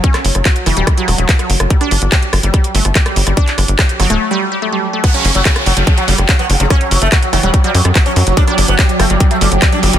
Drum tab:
CC |----------------|----------------|----------------|x---------------|
HH |xxoxxxoxxxoxxxox|xxoxxxoxxxoxxxox|xxoxxxox--------|xxoxxxoxxxoxxxox|
CP |-x--x-------x---|----x-------x---|-x--x-----------|----x-------x---|
SD |-r-r--r-r-r--r-r|-r--r-r-r--r-r-r|--r-r-r---------|r----r-----r----|
BD |o---o---o---o---|o---o---o---o---|o---o-----------|o---o---o---o---|

CC |----------------|----------------|
HH |xxoxxxoxxxoxxxox|xxoxxxoxxxoxxxox|
CP |----x-------x---|----x-------x---|
SD |r-----r----r----|-r----r-----r---|
BD |o---o---o---o---|o---o---o---o---|